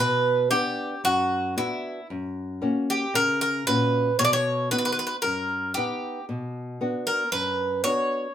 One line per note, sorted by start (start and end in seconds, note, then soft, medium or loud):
0.00 0.50 B2 medium
0.00 0.48 B4 loud
0.50 0.93 B3 medium
0.50 0.93 D4 soft
0.50 1.00 G4 medium
0.50 0.93 F#5 medium
1.04 1.55 F#2 medium
1.04 1.53 F#4 medium
1.57 1.99 B3 soft
1.57 1.99 D4 soft
1.57 2.06 E4 medium
1.57 1.99 F#4 medium
2.10 2.61 F#2 medium
2.62 3.04 A#3 soft
2.62 3.04 C#4 soft
2.62 3.04 F#4 medium
2.90 3.14 G4 medium
3.14 3.65 C#3 medium
3.14 3.40 A#4 medium
3.41 3.67 A#4 medium
3.67 4.09 A#2 soft
3.67 4.09 C#4 soft
3.67 4.09 F#4 medium
3.67 4.19 B4 medium
4.19 4.70 B2 medium
4.19 4.24 C#5 medium
4.25 4.32 D5 medium
4.33 4.71 C#5 loud
4.71 5.14 B3 medium
4.71 5.14 D#4 soft
4.71 5.14 F#4 medium
4.71 4.77 B4 medium
4.78 4.84 B4 medium
4.85 4.91 B4 medium
4.92 4.98 B4 medium
4.99 5.05 B4 medium
5.07 5.15 B4 medium
5.22 5.75 F#2 medium
5.22 5.72 A#4 medium
5.74 6.18 B3 soft
5.74 6.19 D#4 soft
5.74 6.24 G4 medium
5.74 6.19 F#5 medium
6.29 6.79 B2 medium
6.81 7.22 B3 soft
6.81 7.23 D4 soft
6.81 7.23 F#4 medium
7.07 7.32 A#4 medium
7.32 7.83 F#2 medium
7.32 7.83 B4 medium
7.84 8.26 B3 soft
7.84 8.26 D4 soft
7.84 8.26 F#4 medium
7.84 8.33 C#5 medium